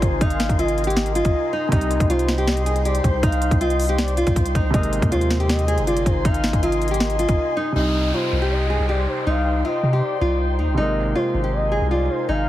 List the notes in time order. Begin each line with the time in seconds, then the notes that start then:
Already playing: C3 G#3 A#3 D#4 F4 A#4 G#5 C6
0.02 G#1 C5, kick, closed hi-hat
0.21 G#1 D#4 F5, kick, closed hi-hat
0.30 closed hi-hat
0.40 snare, closed hi-hat
0.49 G#1, kick, closed hi-hat
0.59 F4 D#5, closed hi-hat
0.68 closed hi-hat
0.78 closed hi-hat
0.84 G4, closed hi-hat
0.90 closed hi-hat
0.96 D#5, snare, closed hi-hat
1.06 closed hi-hat
1.15 F4, closed hi-hat
1.25 G#1, kick, closed hi-hat
1.53 D#4
1.68 C2 C3 G3 D#4 C5 D#5 G5 C6, kick, closed hi-hat
1.76 D#4
1.81 closed hi-hat
1.91 closed hi-hat
2.00 C2, kick, closed hi-hat
2.10 F4 C5, closed hi-hat
2.19 closed hi-hat
2.29 snare, closed hi-hat
2.38 G4, closed hi-hat
2.47 D#5, snare, closed hi-hat
2.57 closed hi-hat
2.66 G#4, closed hi-hat
2.76 closed hi-hat
2.85 G4 D5, closed hi-hat
2.95 closed hi-hat
3.04 C2 C5, kick, closed hi-hat
3.23 C2 D#4 F5, kick, closed hi-hat
3.32 closed hi-hat
3.42 closed hi-hat
3.51 C2, kick, closed hi-hat
3.61 F4 D#5, closed hi-hat
3.70 closed hi-hat
3.80 closed hi-hat, open hi-hat
3.89 G4, closed hi-hat
3.98 D5, snare, closed hi-hat
4.08 closed hi-hat
4.17 F4, closed hi-hat
4.27 C2, kick, closed hi-hat
4.36 C2, kick, closed hi-hat
4.46 closed hi-hat
4.55 C2 D#4, kick, closed hi-hat
4.70 G#1 C3 G#3 D#4 A#4 D#5 G#5 C6, kick, closed hi-hat
4.77 A#3
4.83 closed hi-hat
4.93 closed hi-hat
5.02 D#2, kick, closed hi-hat
5.12 F4 C5, closed hi-hat
5.21 closed hi-hat
5.31 snare, closed hi-hat
5.40 G4, closed hi-hat
5.49 D#5, snare, closed hi-hat
5.59 closed hi-hat
5.68 G#4, closed hi-hat
5.78 G1, closed hi-hat
5.87 F4 D5, closed hi-hat
5.97 closed hi-hat
6.06 G#1 C5, kick, closed hi-hat
6.25 G#1 D#4 F5, kick, closed hi-hat
6.34 closed hi-hat
6.44 snare, closed hi-hat
6.53 G#1, kick, closed hi-hat
6.63 F4 D#5, closed hi-hat
6.72 closed hi-hat
6.82 closed hi-hat
6.88 G4, closed hi-hat
6.94 closed hi-hat
7.00 D#5, snare, closed hi-hat
7.10 closed hi-hat
7.19 F4, closed hi-hat
7.29 G#1, kick, closed hi-hat
7.57 D#4
7.72 C2 C3 G3 D#4 C5 D#5 G5 C6, downlifter
7.79 D#4
8.13 F4 C5
8.32 C2
8.42 G4
8.51 D#5
8.70 G#4
8.80 C2
8.89 G4 D5
9.08 C5
9.27 C2 D#4 F5
9.64 F4 D#5
9.83 C3
9.93 G4
10.02 D5
10.21 C2 F4
10.59 D#2 D#4
10.68 C2
10.74 G#1 C3 G#3 D#4 A#4 D#5 G#5
10.81 A#3
11.15 F4 C5
11.34 G#1
11.44 G4
11.53 D#5
11.72 G#4
11.81 C2
11.91 F4 D5
12.10 C5
12.29 G#1 D#4 F5